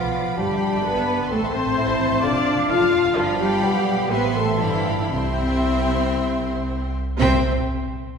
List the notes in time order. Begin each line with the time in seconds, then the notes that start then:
Already playing: F3 B3 F4 F5 B5 D6
0.02 B1 F5
0.16 B1 D5
0.27 B1 F5
0.37 G1 G3 D4 G4 G5 B5
0.51 G1 E5
0.75 G1 E5
0.84 G1 B3 G4 B4 B5
0.96 G1 E5
1.08 G1 B4
1.20 G1 E5
1.31 A1 A3 C4 A4 A5 C6
1.42 A1 E5
1.54 A1 C4 C5 C6
1.65 A1 E5
1.76 A1 E4 A4
1.86 A1 E5
2.00 A1 C5
2.10 A1 E5
2.22 F1 D4 F4 A4 D5 A5 D6
2.34 F1 F5
2.57 F1 F5
2.69 F1 F4 A4 F5 F6
2.81 F1 F5
2.91 F1 D5
3.04 F1 F5
3.15 G1 F3 D4 F4 F5 G5 B5
3.41 G3 G4 G5
3.63 B1 B3
4.11 A1 B3 C4 B4 E5 B5 C6
4.36 A3 A4 A5
4.60 G1 E3 D4 E4 E5 F5 G5 B5
5.00 D3 D4 D5
5.11 C2 C3 C4 E4 C5 E5 G5 C6
7.19 C2 C4 C5 E5 G5